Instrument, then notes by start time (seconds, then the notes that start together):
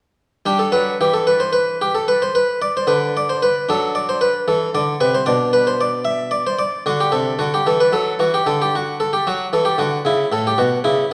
harpsichord
0.46 G3 D4 G4
0.59 A4
0.72 F#3 B4
1.01 E3 G4
1.14 A4
1.27 B4
1.40 C5
1.53 B4
1.82 G4
1.95 A4
2.08 B4
2.22 C5
2.35 B4
2.62 D5
2.77 C5
2.87 D3 B4
3.17 D5
3.29 C5
3.42 B4
3.69 F#3 D4 A4
3.95 D5
4.09 C5
4.21 B4
4.48 E3 A4
4.74 D3 D5
5.00 C3 B4
5.15 C5
5.26 B2 D4 D5
5.53 B4
5.67 C5
5.81 D5
6.05 E5
6.31 D5
6.47 C5
6.59 D5
6.86 D3 D4 F#4
7.00 G4
7.12 C3 A4
7.39 D3 F#4
7.54 G4
7.66 E3 A4
7.80 B4
7.92 F#3 A4
8.19 E3 F#4
8.34 G4
8.46 D3 A4
8.62 G4
8.75 F#4
9.00 A4
9.13 G4
9.27 F#3 F#4
9.53 E3 A4
9.65 G4
9.78 D3 F#4
10.05 C#3 E4
10.32 A2 A4
10.47 G4
10.58 B2 F#4
10.84 C#3 E4